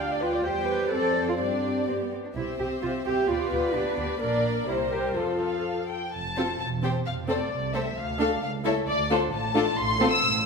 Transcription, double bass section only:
0.00 0.46 D2 soft
0.46 0.90 E2 medium
0.93 1.40 F2 medium
1.40 1.86 G2 soft
1.88 1.96 G2 soft
2.36 2.44 C2 soft
2.59 2.67 C2 soft
2.83 2.91 C2 soft
3.06 3.14 C2 soft
3.29 3.37 D2 medium
3.52 3.60 D2 medium
3.74 3.82 D2 medium
3.97 4.05 D2 medium
4.20 4.65 A#1 medium
4.68 5.15 C2 soft
5.17 5.93 F2 soft
6.13 6.53 F1 medium
6.61 6.99 E1 soft
7.07 7.45 F1 soft
7.52 7.89 C2 soft
7.97 8.34 D2 medium
8.42 8.80 C#2 medium
8.88 9.25 D2 medium
9.33 9.70 A1 medium
9.78 10.15 A1 medium
10.24 10.46 A1 medium

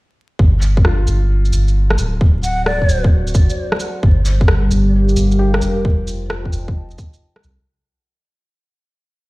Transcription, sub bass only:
0.39 1.06 G1 medium
1.07 1.52 G1 medium
1.53 1.97 G1 medium
1.98 2.88 D1 medium
2.89 3.33 D1 loud
3.35 3.49 F#1 loud
4.03 4.70 G1 medium
4.71 5.15 G1 medium
5.16 5.61 G1 medium
5.62 6.52 F1 medium
6.53 6.97 F1 loud
7.44 7.58 C2 medium

